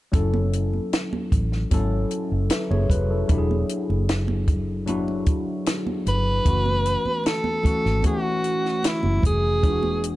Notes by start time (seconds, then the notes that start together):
0.12 F#1 F#3 C#4 E4 A4, kick, closed hi-hat, muted conga
0.34 muted conga, high conga
0.53 closed hi-hat
0.74 high conga
0.93 snare, closed hi-hat
1.13 high conga
1.32 A1, kick, closed hi-hat, low conga
1.52 snare
1.71 G#1 F#3 C#4 E4 A4, kick, closed hi-hat, muted conga, high conga
2.11 closed hi-hat
2.32 F#1
2.50 B4 E5, snare, closed hi-hat, muted conga
2.70 F#1 G#4 C#5, muted conga, high conga
2.90 F1 F#4 B4, kick, closed hi-hat, low conga
3.11 E4 A4
3.28 E1 F#3 D4 E4 G4, kick, closed hi-hat
3.38 G#4
3.51 high conga
3.69 closed hi-hat
3.89 F#1, high conga
4.09 snare, closed hi-hat
4.28 muted conga, high conga
4.48 kick, closed hi-hat, low conga
4.86 F#3 D4 E4 F#4, closed hi-hat, muted conga, high conga
5.08 muted conga
5.26 kick, closed hi-hat
5.66 snare, closed hi-hat, muted conga
5.87 muted conga, high conga
6.06 G1 B4, closed hi-hat, low conga
6.45 F#1 E3 A3 C#4 F#4, kick, closed hi-hat, muted conga
6.66 high conga
6.86 closed hi-hat
7.05 muted fingered electric bass stroke, high conga
7.24 A4, snare, closed hi-hat, muted conga
7.44 muted conga, high conga
7.63 E3 A3 C#4 F#4, muted fingered electric bass stroke, kick, closed hi-hat, low conga
7.85 G#1, snare
8.03 E3 A3 C#4 F#4, kick, closed hi-hat, high conga
8.07 F#4
8.44 closed hi-hat
8.65 snare
8.83 snare, closed hi-hat, muted conga
8.87 E4
9.03 F#1, muted conga, high conga
9.22 F1 G#4, kick, closed hi-hat, low conga
9.62 E1 E3 G#3 D4 F4, kick, closed hi-hat
9.72 F#4
9.83 muted conga, high conga
10.04 closed hi-hat